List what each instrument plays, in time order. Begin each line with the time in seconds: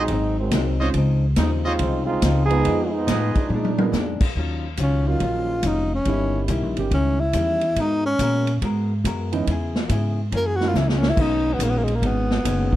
Already playing: trombone section F#3 G#3 C4 D#4
0.08 upright bass G#1, hollow-body jazz guitar G#2 F#3, kick, ride
0.12 hollow-body jazz guitar C4 D#4
0.38 trombone section D#3 F#3 G#3 C4
0.51 upright bass C2, hollow-body jazz guitar G#2 F#3 C4 D#4, kick, snare, hi-hat pedal, ride
0.79 grand piano G#3 C4 C#4 D#4 F4, trumpet section F4 C5 C#5 D#5
0.94 upright bass C#2, hollow-body jazz guitar C#3 F3 C4, kick, ride
0.98 hollow-body jazz guitar D#4
1.36 upright bass D#2, hollow-body jazz guitar C#3 F3 C4 D#4, trombone section F3 G#3 C4 D#4, kick, snare, hi-hat pedal, ride
1.64 trombone section G#3 C4 D#4 F4, trumpet section F4 C5 C#5 D#5
1.79 upright bass C2, hollow-body jazz guitar C#3 F3, kick, ride
1.83 hollow-body jazz guitar C4 D#4
2.04 trombone section G#3 C4 D#4 F4
2.22 upright bass C#2, hollow-body jazz guitar C#3 F3 C4 D#4, kick, snare, hi-hat pedal, ride
2.45 trombone section F3 B3 D#4 G#4
2.50 grand piano G#3 B3 D#4 F4 G#4, ride
2.64 upright bass F2, hollow-body jazz guitar F3 B3 D#4 G#4, kick, ride
2.89 trombone section F3 G#3 B3 D#4
3.07 upright bass A2, hollow-body jazz guitar F3 B3 D#4 G#4, trumpet section F4 G#4 B4 D#5, kick, snare, hi-hat pedal, ride
3.33 trombone section F3 G#3 D4 D#4, muted upright bass stroke, kick, ride
3.49 upright bass A#2, hollow-body jazz guitar A#2 G#3, high tom
3.54 hollow-body jazz guitar B3 D4
3.65 high tom
3.78 grand piano G#3 B3 D4 F4 A#4, high tom
3.92 upright bass F2, hollow-body jazz guitar A#2 G#3 B3 D4, snare, hi-hat pedal
4.21 muted upright bass stroke, kick, crash
4.35 upright bass D#2, hollow-body jazz guitar D#3 F#3 C#4, kick
4.40 hollow-body jazz guitar F4
4.77 upright bass C#2, hollow-body jazz guitar D#3 F#3 C#4 F4, kick, hi-hat pedal, ride
4.83 tenor saxophone C#4
5.07 grand piano F#3 A#3 C#4 D#4 F4, tenor saxophone F4
5.20 upright bass A#1, hollow-body jazz guitar D#3 F#3 C#4 F4, kick, ride
5.63 upright bass F1, hollow-body jazz guitar D#3 F#3 C#4, kick, hi-hat pedal, ride
5.67 tenor saxophone D#4, hollow-body jazz guitar F4
5.95 tenor saxophone C#4
6.05 upright bass G1, hollow-body jazz guitar D#3 G3 C#4, grand piano G3 A#3 C#4 D#4 E4, kick, ride
6.09 hollow-body jazz guitar E4
6.48 upright bass B1, hollow-body jazz guitar D#3 G3 C#4 E4, kick, hi-hat pedal, ride
6.63 upright bass A#1
6.77 upright bass G1, grand piano G3 A#3 C#4 D#4 G4, ride
6.91 upright bass C#2, hollow-body jazz guitar D#3 G3 C#4, tenor saxophone C#4, kick, ride
6.95 hollow-body jazz guitar E4
7.20 tenor saxophone E4
7.33 upright bass E2, hollow-body jazz guitar D#3 G3 C#4 E4, kick, hi-hat pedal, ride
7.61 ride
7.76 upright bass G#2, hollow-body jazz guitar G#3 B3 F#4, kick, ride
7.80 tenor saxophone D#4, hollow-body jazz guitar A#4
8.06 tenor saxophone C#4
8.19 upright bass A#2, hollow-body jazz guitar G#3 B3 F#4 A#4, kick, hi-hat pedal, ride
8.47 ride
8.62 upright bass G#2, hollow-body jazz guitar G#3 B3 F#4 A#4, kick, ride
9.04 upright bass F#2, hollow-body jazz guitar G#3 B3 F#4 A#4, kick, hi-hat pedal, ride
9.32 grand piano E3 G#3 B3 C#4 D#4, ride
9.47 upright bass E2, hollow-body jazz guitar C#3 B3 E4, kick, ride
9.51 hollow-body jazz guitar G#4
9.75 snare
9.89 upright bass G#2, hollow-body jazz guitar C#3 B3 E4 G#4, kick, hi-hat pedal, ride
10.32 upright bass F#2, hollow-body jazz guitar F#2 E3 A#3 C#4, kick, ride
10.36 tenor saxophone A#4
10.47 tenor saxophone G#4
10.56 tenor saxophone F#4
10.61 grand piano F#3 G#3 A#3 C#4 E4, snare
10.68 tenor saxophone F4
10.74 upright bass C#2, hollow-body jazz guitar F#2 E3 A#3 C#4, tenor saxophone E4, snare, hi-hat pedal
10.89 tenor saxophone G#3, snare
10.98 tenor saxophone C#4
11.03 snare
11.09 tenor saxophone E4
11.17 upright bass B1, hollow-body jazz guitar B2 D#3 G#3, grand piano F#3 G#3 B3 C#4 D#4, kick, crash
11.21 hollow-body jazz guitar C#4, tenor saxophone D#4
11.53 tenor saxophone B3
11.59 upright bass A#1, hollow-body jazz guitar B2 D#3 G#3 C#4, kick, hi-hat pedal, ride
11.63 tenor saxophone A#3
11.70 tenor saxophone B3
11.78 tenor saxophone A#3
11.83 tenor saxophone G#3
11.88 ride
11.95 tenor saxophone A#3
12.02 upright bass G#1, hollow-body jazz guitar B2 D#3 G#3 C#4, kick, ride
12.07 tenor saxophone B3
12.31 snare
12.44 upright bass F#1, hollow-body jazz guitar B2 D#3 G#3 C#4, kick, hi-hat pedal, ride
12.73 kick